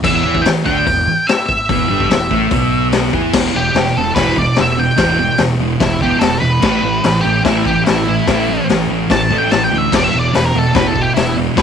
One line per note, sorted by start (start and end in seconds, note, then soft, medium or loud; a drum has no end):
0.03 0.23 E1 medium
0.03 0.23 E2 medium
0.03 0.23 E3 loud
0.03 0.43 E5 loud
0.03 kick loud
0.03 crash loud
0.24 0.44 E2 medium
0.24 0.45 E3 loud
0.24 0.45 E4 loud
0.35 kick medium
0.42 0.48 G5 medium
0.42 muted distorted electric guitar stroke medium
0.42 muted fingered electric bass stroke soft
0.42 open hi-hat medium
0.46 snare loud
0.65 0.85 D2 loud
0.65 0.85 D3 medium
0.65 0.86 D4 loud
0.65 1.29 G5 loud
0.65 kick medium
0.86 1.06 E1 medium
0.86 1.03 E2 medium
0.86 kick loud
0.86 open hi-hat medium
1.27 1.45 E5 medium
1.27 snare loud
1.27 open hi-hat medium
1.46 2.88 E5 medium
1.46 kick medium
1.69 1.88 E1 loud
1.69 1.89 E2 medium
1.69 1.90 E3 loud
1.69 kick loud
1.69 open hi-hat medium
1.89 2.09 G1 medium
1.89 2.09 G2 loud
1.89 2.10 G3 medium
2.00 kick medium
2.11 2.30 E1 medium
2.11 2.27 E2 medium
2.11 snare loud
2.11 open hi-hat medium
2.31 2.50 A1 loud
2.31 2.51 A2 medium
2.31 2.51 A3 medium
2.31 kick medium
2.51 3.09 B1 loud
2.51 3.13 B2 loud
2.51 3.13 B3 loud
2.51 kick loud
2.51 open hi-hat medium
2.92 snare loud
2.92 open hi-hat medium
3.13 3.32 E2 loud
3.13 3.34 E3 loud
3.13 3.34 E4 loud
3.13 kick medium
3.33 3.49 E1 medium
3.33 3.53 E2 medium
3.33 3.53 B2 medium
3.33 3.54 E3 medium
3.33 kick loud
3.33 snare loud
3.33 crash loud
3.55 3.70 E1 medium
3.55 3.73 E2 medium
3.55 3.73 B2 medium
3.55 3.95 G4 loud
3.74 3.90 E1 medium
3.74 3.94 E2 medium
3.74 3.94 B2 medium
3.74 snare loud
3.74 open hi-hat medium
3.96 4.11 E1 medium
3.96 4.15 E2 medium
3.96 4.15 B2 medium
3.96 4.15 A4 medium
4.15 4.46 E1 medium
4.15 4.36 E2 loud
4.15 4.36 B2 medium
4.15 4.35 B4 medium
4.15 kick loud
4.15 snare loud
4.15 open hi-hat medium
4.19 4.37 E3 loud
4.36 4.56 E2 medium
4.36 4.56 B2 medium
4.36 4.57 D5 medium
4.36 kick medium
4.56 4.88 E1 medium
4.56 4.77 E2 medium
4.56 4.77 B2 loud
4.56 snare loud
4.56 open hi-hat medium
4.61 4.79 E5 medium
4.78 4.96 E2 medium
4.78 4.96 B2 medium
4.78 5.18 G5 medium
4.97 5.28 E1 loud
4.97 5.17 E2 medium
4.97 5.18 B2 medium
4.97 5.18 E3 loud
4.97 kick loud
4.97 snare loud
4.97 open hi-hat medium
5.19 5.38 E2 medium
5.19 5.38 B2 medium
5.19 5.39 G5 loud
5.38 5.54 E1 medium
5.38 5.59 E2 medium
5.38 5.59 B2 medium
5.38 snare loud
5.38 open hi-hat medium
5.58 5.74 E1 medium
5.58 5.79 E2 medium
5.58 5.79 B2 medium
5.80 6.11 E1 loud
5.80 6.00 E2 medium
5.80 6.00 B2 medium
5.80 6.01 E4 medium
5.80 kick loud
5.80 snare loud
5.80 open hi-hat medium
6.01 6.21 E2 medium
6.01 6.21 B2 loud
6.01 6.22 E3 loud
6.01 6.22 G4 medium
6.01 kick medium
6.19 6.36 E1 loud
6.19 6.40 E2 medium
6.19 6.40 B2 medium
6.19 6.40 A4 medium
6.19 snare loud
6.19 open hi-hat medium
6.40 6.57 E1 medium
6.40 6.61 E2 medium
6.40 6.61 B2 medium
6.40 7.22 B4 medium
6.61 6.78 A1 medium
6.61 6.82 A2 medium
6.61 6.82 E3 medium
6.61 6.83 A3 loud
6.61 kick loud
6.61 snare loud
6.61 crash loud
6.83 6.98 A1 medium
6.83 7.02 A2 medium
6.83 7.03 E3 medium
7.04 7.20 A1 medium
7.04 7.23 A2 medium
7.04 7.23 E3 loud
7.04 snare loud
7.04 open hi-hat medium
7.21 7.40 A1 loud
7.21 7.44 A2 medium
7.21 7.44 E3 medium
7.21 7.43 G4 medium
7.45 7.76 A1 loud
7.45 7.65 A2 medium
7.45 7.65 E3 loud
7.45 7.66 A3 loud
7.45 7.65 E4 medium
7.45 kick loud
7.45 snare loud
7.45 open hi-hat medium
7.65 7.86 A2 medium
7.65 7.86 E3 medium
7.65 7.85 G4 medium
7.65 kick medium
7.85 8.18 A1 medium
7.85 8.06 A2 medium
7.85 8.06 E3 medium
7.85 8.66 E4 medium
7.85 snare loud
7.85 open hi-hat medium
8.08 8.26 A2 medium
8.08 8.26 E3 medium
8.27 8.58 A1 loud
8.27 8.47 A2 medium
8.27 8.47 E3 medium
8.27 8.48 A3 medium
8.27 kick loud
8.27 snare loud
8.27 open hi-hat medium
8.49 8.68 A2 medium
8.49 8.68 E3 medium
8.69 8.85 A1 medium
8.69 8.88 A2 medium
8.69 8.89 E3 medium
8.69 snare loud
8.69 open hi-hat medium
8.88 9.04 A1 medium
8.88 9.09 A2 medium
8.88 9.09 E3 medium
9.10 9.40 A1 medium
9.10 9.29 A2 medium
9.10 9.29 E3 medium
9.10 9.38 A5 medium
9.10 kick loud
9.10 snare loud
9.10 open hi-hat medium
9.31 9.51 A2 loud
9.31 9.51 E3 medium
9.31 9.51 A3 loud
9.31 kick medium
9.38 9.51 G5 loud
9.51 9.67 A1 medium
9.51 9.71 A2 medium
9.51 9.71 E3 medium
9.51 9.64 A5 medium
9.51 snare loud
9.51 open hi-hat medium
9.64 9.78 G5 medium
9.72 9.87 D2 loud
9.72 9.91 A2 medium
9.72 9.91 E3 medium
9.78 9.92 E5 medium
9.92 10.08 E1 loud
9.92 10.12 E2 medium
9.92 10.12 B2 loud
9.92 10.13 E3 medium
9.92 10.04 D5 loud
9.92 kick loud
9.92 snare loud
9.92 crash loud
10.04 10.19 E5 medium
10.14 10.29 E1 medium
10.14 10.33 E2 medium
10.14 10.33 B2 medium
10.19 10.34 D5 loud
10.34 10.50 E1 medium
10.34 10.53 E2 medium
10.34 10.53 B2 medium
10.34 10.45 B4 medium
10.34 snare loud
10.34 open hi-hat medium
10.45 10.58 A#4 medium
10.55 10.70 E1 loud
10.55 10.72 E2 medium
10.55 10.74 B2 medium
10.55 10.74 A4 medium
10.73 11.06 E1 medium
10.73 10.92 E2 loud
10.73 10.93 B2 loud
10.73 10.95 E3 loud
10.73 10.87 B4 medium
10.73 kick loud
10.73 snare loud
10.73 open hi-hat medium
10.87 11.02 A4 loud
10.93 11.14 E2 medium
10.93 11.14 B2 medium
10.93 kick medium
11.01 11.14 G4 medium
11.14 11.47 E1 medium
11.14 11.35 E2 medium
11.14 11.36 B2 loud
11.14 11.36 E4 loud
11.14 snare loud
11.14 open hi-hat medium
11.36 11.55 E2 medium
11.36 11.56 B2 medium
11.56 11.62 E1 medium
11.56 11.62 E2 medium
11.56 11.62 B2 medium
11.56 11.62 E3 loud
11.56 11.62 B4 loud
11.56 kick loud
11.56 snare loud
11.56 open hi-hat medium